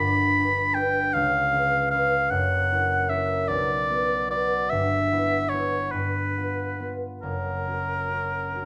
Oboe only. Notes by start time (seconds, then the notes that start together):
Already playing: B5
0.74 G5
1.14 F5
1.91 F5
2.30 F#5
3.09 E5
3.48 D5
4.31 D5
4.70 E5
5.49 C#5
5.92 B4
7.22 A#4